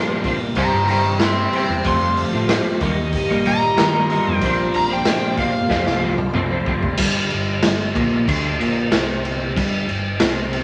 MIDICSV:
0, 0, Header, 1, 8, 480
1, 0, Start_track
1, 0, Tempo, 642398
1, 1388, Time_signature, 4, 2, 24, 8
1, 7946, End_track
2, 0, Start_track
2, 0, Title_t, "Electric slide guitar"
2, 0, Program_c, 0, 29
2, 0, Note_on_c, 0, 70, 103
2, 165, Note_off_c, 0, 70, 0
2, 435, Note_on_c, 0, 79, 82
2, 436, Note_on_c, 0, 82, 102
2, 664, Note_off_c, 0, 82, 0
2, 667, Note_off_c, 0, 79, 0
2, 676, Note_on_c, 0, 79, 90
2, 680, Note_on_c, 0, 82, 102
2, 895, Note_off_c, 0, 79, 0
2, 907, Note_off_c, 0, 82, 0
2, 920, Note_on_c, 0, 79, 82
2, 924, Note_on_c, 0, 84, 97
2, 1138, Note_off_c, 0, 79, 0
2, 1149, Note_off_c, 0, 84, 0
2, 1170, Note_on_c, 0, 79, 94
2, 1177, Note_on_c, 0, 84, 94
2, 1383, Note_off_c, 0, 79, 0
2, 1395, Note_off_c, 0, 84, 0
2, 1403, Note_on_c, 0, 84, 106
2, 1628, Note_off_c, 0, 84, 0
2, 2594, Note_on_c, 0, 82, 122
2, 3267, Note_off_c, 0, 82, 0
2, 3267, Note_on_c, 0, 79, 122
2, 3522, Note_off_c, 0, 79, 0
2, 3558, Note_on_c, 0, 82, 92
2, 3669, Note_off_c, 0, 82, 0
2, 3684, Note_on_c, 0, 79, 98
2, 4024, Note_off_c, 0, 79, 0
2, 4029, Note_on_c, 0, 77, 102
2, 4493, Note_off_c, 0, 77, 0
2, 7946, End_track
3, 0, Start_track
3, 0, Title_t, "String section"
3, 0, Program_c, 1, 48
3, 0, Note_on_c, 1, 60, 74
3, 0, Note_on_c, 1, 62, 67
3, 0, Note_on_c, 1, 65, 70
3, 0, Note_on_c, 1, 70, 86
3, 409, Note_off_c, 1, 70, 0
3, 416, Note_off_c, 1, 62, 0
3, 420, Note_off_c, 1, 65, 0
3, 424, Note_on_c, 1, 64, 60
3, 430, Note_on_c, 1, 67, 61
3, 431, Note_on_c, 1, 72, 78
3, 1372, Note_off_c, 1, 72, 0
3, 1373, Note_on_c, 1, 65, 69
3, 1376, Note_off_c, 1, 64, 0
3, 1377, Note_on_c, 1, 69, 70
3, 1379, Note_off_c, 1, 67, 0
3, 1381, Note_on_c, 1, 72, 85
3, 2085, Note_off_c, 1, 60, 0
3, 2093, Note_off_c, 1, 65, 0
3, 2095, Note_off_c, 1, 69, 0
3, 2097, Note_off_c, 1, 72, 0
3, 2107, Note_on_c, 1, 58, 72
3, 2107, Note_on_c, 1, 67, 69
3, 2110, Note_on_c, 1, 70, 73
3, 2112, Note_on_c, 1, 75, 84
3, 3295, Note_off_c, 1, 58, 0
3, 3295, Note_off_c, 1, 67, 0
3, 3297, Note_off_c, 1, 75, 0
3, 3319, Note_on_c, 1, 72, 89
3, 3321, Note_on_c, 1, 62, 77
3, 3326, Note_on_c, 1, 65, 74
3, 4246, Note_off_c, 1, 70, 0
3, 4255, Note_off_c, 1, 72, 0
3, 4262, Note_on_c, 1, 60, 62
3, 4264, Note_off_c, 1, 62, 0
3, 4264, Note_on_c, 1, 72, 78
3, 4267, Note_on_c, 1, 69, 65
3, 5215, Note_off_c, 1, 60, 0
3, 5216, Note_off_c, 1, 72, 0
3, 5217, Note_off_c, 1, 65, 0
3, 5217, Note_off_c, 1, 69, 0
3, 7946, End_track
4, 0, Start_track
4, 0, Title_t, "Clean electric guitar"
4, 0, Program_c, 2, 27
4, 0, Note_on_c, 2, 46, 96
4, 0, Note_on_c, 2, 50, 98
4, 0, Note_on_c, 2, 53, 101
4, 0, Note_on_c, 2, 60, 107
4, 0, Note_on_c, 2, 62, 103
4, 166, Note_off_c, 2, 50, 0
4, 174, Note_off_c, 2, 53, 0
4, 175, Note_on_c, 2, 50, 77
4, 179, Note_off_c, 2, 60, 0
4, 183, Note_off_c, 2, 62, 0
4, 183, Note_on_c, 2, 53, 83
4, 188, Note_on_c, 2, 60, 83
4, 192, Note_on_c, 2, 62, 87
4, 290, Note_off_c, 2, 62, 0
4, 292, Note_off_c, 2, 60, 0
4, 295, Note_off_c, 2, 50, 0
4, 295, Note_off_c, 2, 53, 0
4, 409, Note_off_c, 2, 46, 0
4, 419, Note_on_c, 2, 48, 92
4, 427, Note_on_c, 2, 55, 110
4, 431, Note_on_c, 2, 60, 110
4, 436, Note_on_c, 2, 64, 102
4, 531, Note_off_c, 2, 64, 0
4, 540, Note_on_c, 2, 64, 78
4, 542, Note_off_c, 2, 60, 0
4, 551, Note_off_c, 2, 55, 0
4, 551, Note_on_c, 2, 60, 62
4, 560, Note_on_c, 2, 55, 51
4, 654, Note_off_c, 2, 48, 0
4, 663, Note_off_c, 2, 55, 0
4, 663, Note_on_c, 2, 48, 70
4, 667, Note_off_c, 2, 60, 0
4, 672, Note_on_c, 2, 55, 76
4, 674, Note_off_c, 2, 64, 0
4, 676, Note_on_c, 2, 60, 72
4, 683, Note_on_c, 2, 64, 71
4, 776, Note_off_c, 2, 64, 0
4, 777, Note_off_c, 2, 60, 0
4, 782, Note_off_c, 2, 55, 0
4, 890, Note_off_c, 2, 48, 0
4, 899, Note_on_c, 2, 48, 85
4, 908, Note_on_c, 2, 55, 86
4, 911, Note_on_c, 2, 60, 92
4, 915, Note_on_c, 2, 64, 101
4, 1007, Note_off_c, 2, 64, 0
4, 1016, Note_on_c, 2, 64, 78
4, 1018, Note_off_c, 2, 60, 0
4, 1024, Note_off_c, 2, 55, 0
4, 1027, Note_on_c, 2, 60, 67
4, 1033, Note_on_c, 2, 55, 63
4, 1125, Note_off_c, 2, 48, 0
4, 1133, Note_off_c, 2, 55, 0
4, 1134, Note_on_c, 2, 48, 73
4, 1137, Note_off_c, 2, 60, 0
4, 1141, Note_off_c, 2, 64, 0
4, 1142, Note_on_c, 2, 55, 84
4, 1146, Note_on_c, 2, 60, 86
4, 1150, Note_on_c, 2, 64, 90
4, 1366, Note_off_c, 2, 48, 0
4, 1370, Note_off_c, 2, 55, 0
4, 1372, Note_off_c, 2, 60, 0
4, 1374, Note_off_c, 2, 64, 0
4, 1376, Note_on_c, 2, 53, 99
4, 1384, Note_on_c, 2, 57, 99
4, 1387, Note_on_c, 2, 60, 94
4, 1394, Note_on_c, 2, 65, 93
4, 1731, Note_off_c, 2, 65, 0
4, 1738, Note_off_c, 2, 60, 0
4, 1740, Note_on_c, 2, 65, 73
4, 1747, Note_on_c, 2, 60, 67
4, 1749, Note_off_c, 2, 57, 0
4, 1758, Note_on_c, 2, 57, 59
4, 1845, Note_off_c, 2, 53, 0
4, 1851, Note_off_c, 2, 57, 0
4, 1854, Note_on_c, 2, 53, 90
4, 1857, Note_off_c, 2, 60, 0
4, 1860, Note_off_c, 2, 65, 0
4, 1860, Note_on_c, 2, 57, 92
4, 1866, Note_on_c, 2, 60, 97
4, 1869, Note_on_c, 2, 65, 114
4, 2086, Note_off_c, 2, 53, 0
4, 2089, Note_off_c, 2, 57, 0
4, 2092, Note_off_c, 2, 60, 0
4, 2094, Note_off_c, 2, 65, 0
4, 2094, Note_on_c, 2, 51, 99
4, 2102, Note_on_c, 2, 55, 92
4, 2107, Note_on_c, 2, 58, 101
4, 2112, Note_on_c, 2, 63, 108
4, 2211, Note_off_c, 2, 63, 0
4, 2216, Note_off_c, 2, 58, 0
4, 2219, Note_off_c, 2, 55, 0
4, 2460, Note_on_c, 2, 63, 73
4, 2461, Note_off_c, 2, 51, 0
4, 2471, Note_on_c, 2, 58, 69
4, 2477, Note_on_c, 2, 55, 58
4, 2580, Note_off_c, 2, 55, 0
4, 2580, Note_on_c, 2, 51, 73
4, 2582, Note_off_c, 2, 58, 0
4, 2589, Note_off_c, 2, 63, 0
4, 2589, Note_on_c, 2, 55, 71
4, 2591, Note_on_c, 2, 58, 75
4, 2598, Note_on_c, 2, 63, 82
4, 2696, Note_off_c, 2, 63, 0
4, 2700, Note_off_c, 2, 55, 0
4, 2700, Note_off_c, 2, 58, 0
4, 2808, Note_off_c, 2, 51, 0
4, 2817, Note_on_c, 2, 51, 79
4, 2826, Note_on_c, 2, 55, 89
4, 2829, Note_on_c, 2, 58, 85
4, 2834, Note_on_c, 2, 63, 98
4, 2932, Note_off_c, 2, 63, 0
4, 2940, Note_off_c, 2, 58, 0
4, 2941, Note_on_c, 2, 63, 87
4, 2948, Note_off_c, 2, 55, 0
4, 2949, Note_on_c, 2, 58, 67
4, 2957, Note_on_c, 2, 55, 59
4, 3050, Note_off_c, 2, 51, 0
4, 3058, Note_off_c, 2, 55, 0
4, 3059, Note_on_c, 2, 51, 78
4, 3062, Note_off_c, 2, 58, 0
4, 3067, Note_on_c, 2, 55, 76
4, 3068, Note_off_c, 2, 63, 0
4, 3071, Note_on_c, 2, 58, 90
4, 3077, Note_on_c, 2, 63, 86
4, 3288, Note_off_c, 2, 51, 0
4, 3293, Note_off_c, 2, 55, 0
4, 3294, Note_off_c, 2, 58, 0
4, 3297, Note_off_c, 2, 63, 0
4, 3302, Note_on_c, 2, 46, 93
4, 3306, Note_on_c, 2, 50, 92
4, 3312, Note_on_c, 2, 53, 97
4, 3313, Note_on_c, 2, 60, 97
4, 3319, Note_on_c, 2, 62, 92
4, 3648, Note_off_c, 2, 62, 0
4, 3656, Note_off_c, 2, 60, 0
4, 3657, Note_on_c, 2, 62, 79
4, 3663, Note_off_c, 2, 53, 0
4, 3665, Note_on_c, 2, 60, 66
4, 3672, Note_on_c, 2, 53, 58
4, 3765, Note_off_c, 2, 46, 0
4, 3770, Note_off_c, 2, 50, 0
4, 3774, Note_on_c, 2, 46, 97
4, 3775, Note_off_c, 2, 53, 0
4, 3779, Note_on_c, 2, 50, 106
4, 3781, Note_off_c, 2, 60, 0
4, 3782, Note_off_c, 2, 62, 0
4, 3784, Note_on_c, 2, 53, 99
4, 3790, Note_on_c, 2, 60, 98
4, 3791, Note_on_c, 2, 62, 106
4, 4005, Note_off_c, 2, 50, 0
4, 4012, Note_off_c, 2, 53, 0
4, 4014, Note_on_c, 2, 50, 89
4, 4018, Note_off_c, 2, 60, 0
4, 4021, Note_on_c, 2, 53, 77
4, 4023, Note_off_c, 2, 62, 0
4, 4027, Note_on_c, 2, 60, 80
4, 4032, Note_on_c, 2, 62, 82
4, 4133, Note_off_c, 2, 62, 0
4, 4136, Note_off_c, 2, 60, 0
4, 4137, Note_off_c, 2, 53, 0
4, 4139, Note_off_c, 2, 50, 0
4, 4246, Note_off_c, 2, 46, 0
4, 4254, Note_on_c, 2, 41, 98
4, 4259, Note_on_c, 2, 48, 105
4, 4263, Note_on_c, 2, 53, 99
4, 4270, Note_on_c, 2, 57, 101
4, 4273, Note_on_c, 2, 60, 102
4, 4368, Note_off_c, 2, 60, 0
4, 4377, Note_off_c, 2, 57, 0
4, 4377, Note_on_c, 2, 60, 71
4, 4383, Note_off_c, 2, 53, 0
4, 4386, Note_on_c, 2, 57, 61
4, 4392, Note_on_c, 2, 53, 54
4, 4488, Note_off_c, 2, 48, 0
4, 4492, Note_off_c, 2, 53, 0
4, 4497, Note_on_c, 2, 48, 63
4, 4499, Note_off_c, 2, 57, 0
4, 4501, Note_on_c, 2, 53, 84
4, 4503, Note_off_c, 2, 60, 0
4, 4508, Note_on_c, 2, 57, 71
4, 4512, Note_on_c, 2, 60, 73
4, 4604, Note_off_c, 2, 60, 0
4, 4609, Note_off_c, 2, 57, 0
4, 4612, Note_off_c, 2, 48, 0
4, 4612, Note_off_c, 2, 53, 0
4, 4620, Note_off_c, 2, 41, 0
4, 4736, Note_on_c, 2, 41, 96
4, 4742, Note_on_c, 2, 48, 108
4, 4747, Note_on_c, 2, 53, 85
4, 4748, Note_on_c, 2, 57, 89
4, 4756, Note_on_c, 2, 60, 98
4, 4852, Note_off_c, 2, 60, 0
4, 4860, Note_off_c, 2, 57, 0
4, 4861, Note_on_c, 2, 60, 83
4, 4867, Note_off_c, 2, 53, 0
4, 4869, Note_on_c, 2, 57, 69
4, 4876, Note_on_c, 2, 53, 62
4, 4972, Note_off_c, 2, 48, 0
4, 4980, Note_off_c, 2, 53, 0
4, 4981, Note_on_c, 2, 48, 80
4, 4983, Note_off_c, 2, 57, 0
4, 4989, Note_on_c, 2, 53, 85
4, 4991, Note_off_c, 2, 60, 0
4, 4992, Note_on_c, 2, 57, 90
4, 5000, Note_on_c, 2, 60, 87
4, 5101, Note_off_c, 2, 41, 0
4, 5209, Note_off_c, 2, 48, 0
4, 5213, Note_off_c, 2, 53, 0
4, 5215, Note_off_c, 2, 57, 0
4, 5219, Note_off_c, 2, 60, 0
4, 5223, Note_on_c, 2, 43, 109
4, 5455, Note_off_c, 2, 43, 0
4, 5464, Note_on_c, 2, 43, 76
4, 5657, Note_off_c, 2, 43, 0
4, 5705, Note_on_c, 2, 43, 82
4, 5898, Note_off_c, 2, 43, 0
4, 5942, Note_on_c, 2, 46, 107
4, 6177, Note_off_c, 2, 46, 0
4, 6190, Note_on_c, 2, 50, 109
4, 6419, Note_off_c, 2, 50, 0
4, 6422, Note_on_c, 2, 46, 91
4, 6658, Note_off_c, 2, 46, 0
4, 6667, Note_on_c, 2, 48, 106
4, 7140, Note_off_c, 2, 48, 0
4, 7146, Note_on_c, 2, 43, 103
4, 7376, Note_off_c, 2, 43, 0
4, 7385, Note_on_c, 2, 43, 68
4, 7579, Note_off_c, 2, 43, 0
4, 7626, Note_on_c, 2, 48, 113
4, 7946, Note_off_c, 2, 48, 0
4, 7946, End_track
5, 0, Start_track
5, 0, Title_t, "Tanpura"
5, 0, Program_c, 3, 104
5, 0, Note_on_c, 3, 43, 70
5, 0, Note_on_c, 3, 46, 57
5, 0, Note_on_c, 3, 48, 69
5, 0, Note_on_c, 3, 50, 59
5, 0, Note_on_c, 3, 55, 61
5, 468, Note_off_c, 3, 43, 0
5, 471, Note_on_c, 3, 43, 69
5, 740, Note_off_c, 3, 50, 0
5, 927, Note_off_c, 3, 48, 0
5, 930, Note_on_c, 3, 48, 58
5, 1392, Note_off_c, 3, 55, 0
5, 1392, Note_on_c, 3, 55, 71
5, 1859, Note_off_c, 3, 55, 0
5, 1859, Note_on_c, 3, 55, 64
5, 2325, Note_off_c, 3, 43, 0
5, 2328, Note_on_c, 3, 43, 67
5, 2781, Note_off_c, 3, 46, 0
5, 2784, Note_on_c, 3, 46, 66
5, 3249, Note_off_c, 3, 55, 0
5, 3249, Note_on_c, 3, 55, 65
5, 3711, Note_off_c, 3, 55, 0
5, 3711, Note_on_c, 3, 55, 63
5, 4171, Note_off_c, 3, 43, 0
5, 4174, Note_on_c, 3, 43, 68
5, 4636, Note_on_c, 3, 50, 69
5, 5089, Note_off_c, 3, 55, 0
5, 5089, Note_on_c, 3, 55, 61
5, 6273, Note_off_c, 3, 48, 0
5, 7946, Note_off_c, 3, 43, 0
5, 7946, Note_off_c, 3, 46, 0
5, 7946, Note_off_c, 3, 50, 0
5, 7946, Note_off_c, 3, 55, 0
5, 7946, End_track
6, 0, Start_track
6, 0, Title_t, "Picked electric bass"
6, 0, Program_c, 4, 34
6, 420, Note_on_c, 4, 36, 108
6, 513, Note_off_c, 4, 36, 0
6, 546, Note_on_c, 4, 43, 102
6, 1088, Note_off_c, 4, 43, 0
6, 1264, Note_on_c, 4, 40, 89
6, 1356, Note_off_c, 4, 40, 0
6, 1382, Note_on_c, 4, 41, 101
6, 1655, Note_off_c, 4, 41, 0
6, 1747, Note_on_c, 4, 45, 85
6, 1928, Note_off_c, 4, 45, 0
6, 2101, Note_on_c, 4, 39, 102
6, 2374, Note_off_c, 4, 39, 0
6, 2471, Note_on_c, 4, 34, 91
6, 2560, Note_off_c, 4, 34, 0
6, 2593, Note_on_c, 4, 34, 94
6, 2771, Note_off_c, 4, 34, 0
6, 2833, Note_on_c, 4, 51, 93
6, 3101, Note_off_c, 4, 51, 0
6, 3193, Note_on_c, 4, 41, 87
6, 3281, Note_off_c, 4, 41, 0
6, 3302, Note_on_c, 4, 34, 110
6, 3484, Note_off_c, 4, 34, 0
6, 3552, Note_on_c, 4, 34, 92
6, 3730, Note_off_c, 4, 34, 0
6, 4259, Note_on_c, 4, 29, 102
6, 4352, Note_off_c, 4, 29, 0
6, 4384, Note_on_c, 4, 36, 99
6, 4926, Note_off_c, 4, 36, 0
6, 5100, Note_on_c, 4, 29, 94
6, 5193, Note_off_c, 4, 29, 0
6, 5218, Note_on_c, 4, 31, 103
6, 5445, Note_off_c, 4, 31, 0
6, 5472, Note_on_c, 4, 31, 78
6, 5693, Note_off_c, 4, 31, 0
6, 5719, Note_on_c, 4, 31, 73
6, 5937, Note_off_c, 4, 31, 0
6, 5947, Note_on_c, 4, 34, 97
6, 6170, Note_off_c, 4, 34, 0
6, 6184, Note_on_c, 4, 38, 105
6, 6409, Note_off_c, 4, 38, 0
6, 6443, Note_on_c, 4, 34, 91
6, 6659, Note_off_c, 4, 34, 0
6, 6672, Note_on_c, 4, 36, 86
6, 7121, Note_off_c, 4, 36, 0
6, 7148, Note_on_c, 4, 31, 103
6, 7372, Note_off_c, 4, 31, 0
6, 7392, Note_on_c, 4, 31, 76
6, 7614, Note_off_c, 4, 31, 0
6, 7631, Note_on_c, 4, 36, 93
6, 7946, Note_off_c, 4, 36, 0
6, 7946, End_track
7, 0, Start_track
7, 0, Title_t, "Muted clean electric guitar strokes"
7, 299, Note_on_c, 9, 29, 51
7, 374, Note_off_c, 9, 29, 0
7, 785, Note_on_c, 9, 29, 58
7, 860, Note_off_c, 9, 29, 0
7, 2220, Note_on_c, 9, 29, 52
7, 2295, Note_off_c, 9, 29, 0
7, 2705, Note_on_c, 9, 29, 55
7, 2780, Note_off_c, 9, 29, 0
7, 4142, Note_on_c, 9, 29, 58
7, 4217, Note_off_c, 9, 29, 0
7, 4613, Note_on_c, 9, 29, 50
7, 4687, Note_off_c, 9, 29, 0
7, 7946, End_track
8, 0, Start_track
8, 0, Title_t, "Drums"
8, 180, Note_on_c, 9, 36, 88
8, 180, Note_on_c, 9, 46, 55
8, 255, Note_off_c, 9, 36, 0
8, 255, Note_off_c, 9, 46, 0
8, 414, Note_on_c, 9, 46, 67
8, 419, Note_on_c, 9, 36, 76
8, 488, Note_off_c, 9, 46, 0
8, 493, Note_off_c, 9, 36, 0
8, 656, Note_on_c, 9, 46, 59
8, 731, Note_off_c, 9, 46, 0
8, 894, Note_on_c, 9, 38, 107
8, 894, Note_on_c, 9, 46, 78
8, 969, Note_off_c, 9, 38, 0
8, 969, Note_off_c, 9, 46, 0
8, 1143, Note_on_c, 9, 46, 65
8, 1217, Note_off_c, 9, 46, 0
8, 1378, Note_on_c, 9, 46, 77
8, 1382, Note_on_c, 9, 36, 105
8, 1453, Note_off_c, 9, 46, 0
8, 1457, Note_off_c, 9, 36, 0
8, 1621, Note_on_c, 9, 46, 58
8, 1696, Note_off_c, 9, 46, 0
8, 1861, Note_on_c, 9, 38, 118
8, 1861, Note_on_c, 9, 46, 84
8, 1936, Note_off_c, 9, 38, 0
8, 1936, Note_off_c, 9, 46, 0
8, 2097, Note_on_c, 9, 46, 66
8, 2101, Note_on_c, 9, 36, 81
8, 2171, Note_off_c, 9, 46, 0
8, 2175, Note_off_c, 9, 36, 0
8, 2335, Note_on_c, 9, 46, 73
8, 2340, Note_on_c, 9, 36, 78
8, 2410, Note_off_c, 9, 46, 0
8, 2415, Note_off_c, 9, 36, 0
8, 2582, Note_on_c, 9, 46, 65
8, 2656, Note_off_c, 9, 46, 0
8, 2822, Note_on_c, 9, 38, 117
8, 2822, Note_on_c, 9, 46, 73
8, 2897, Note_off_c, 9, 38, 0
8, 2897, Note_off_c, 9, 46, 0
8, 3063, Note_on_c, 9, 46, 62
8, 3137, Note_off_c, 9, 46, 0
8, 3298, Note_on_c, 9, 46, 74
8, 3300, Note_on_c, 9, 36, 117
8, 3373, Note_off_c, 9, 46, 0
8, 3375, Note_off_c, 9, 36, 0
8, 3542, Note_on_c, 9, 46, 57
8, 3616, Note_off_c, 9, 46, 0
8, 3776, Note_on_c, 9, 38, 124
8, 3776, Note_on_c, 9, 46, 85
8, 3851, Note_off_c, 9, 38, 0
8, 3851, Note_off_c, 9, 46, 0
8, 4015, Note_on_c, 9, 46, 55
8, 4017, Note_on_c, 9, 36, 89
8, 4089, Note_off_c, 9, 46, 0
8, 4091, Note_off_c, 9, 36, 0
8, 4256, Note_on_c, 9, 38, 66
8, 4258, Note_on_c, 9, 36, 89
8, 4331, Note_off_c, 9, 38, 0
8, 4332, Note_off_c, 9, 36, 0
8, 4381, Note_on_c, 9, 38, 63
8, 4456, Note_off_c, 9, 38, 0
8, 4618, Note_on_c, 9, 47, 67
8, 4692, Note_off_c, 9, 47, 0
8, 4734, Note_on_c, 9, 45, 89
8, 4808, Note_off_c, 9, 45, 0
8, 4979, Note_on_c, 9, 36, 101
8, 5053, Note_off_c, 9, 36, 0
8, 5100, Note_on_c, 9, 36, 87
8, 5175, Note_off_c, 9, 36, 0
8, 5211, Note_on_c, 9, 49, 124
8, 5211, Note_on_c, 9, 57, 84
8, 5218, Note_on_c, 9, 36, 109
8, 5286, Note_off_c, 9, 49, 0
8, 5286, Note_off_c, 9, 57, 0
8, 5293, Note_off_c, 9, 36, 0
8, 5457, Note_on_c, 9, 57, 63
8, 5532, Note_off_c, 9, 57, 0
8, 5699, Note_on_c, 9, 38, 121
8, 5699, Note_on_c, 9, 57, 91
8, 5773, Note_off_c, 9, 38, 0
8, 5773, Note_off_c, 9, 57, 0
8, 5944, Note_on_c, 9, 36, 113
8, 5947, Note_on_c, 9, 57, 65
8, 6019, Note_off_c, 9, 36, 0
8, 6022, Note_off_c, 9, 57, 0
8, 6186, Note_on_c, 9, 36, 102
8, 6190, Note_on_c, 9, 57, 82
8, 6260, Note_off_c, 9, 36, 0
8, 6265, Note_off_c, 9, 57, 0
8, 6432, Note_on_c, 9, 57, 64
8, 6506, Note_off_c, 9, 57, 0
8, 6664, Note_on_c, 9, 38, 112
8, 6664, Note_on_c, 9, 57, 78
8, 6739, Note_off_c, 9, 38, 0
8, 6739, Note_off_c, 9, 57, 0
8, 6911, Note_on_c, 9, 57, 57
8, 6985, Note_off_c, 9, 57, 0
8, 7147, Note_on_c, 9, 36, 110
8, 7152, Note_on_c, 9, 57, 85
8, 7222, Note_off_c, 9, 36, 0
8, 7226, Note_off_c, 9, 57, 0
8, 7387, Note_on_c, 9, 57, 57
8, 7462, Note_off_c, 9, 57, 0
8, 7621, Note_on_c, 9, 38, 119
8, 7621, Note_on_c, 9, 57, 84
8, 7696, Note_off_c, 9, 38, 0
8, 7696, Note_off_c, 9, 57, 0
8, 7867, Note_on_c, 9, 57, 64
8, 7941, Note_off_c, 9, 57, 0
8, 7946, End_track
0, 0, End_of_file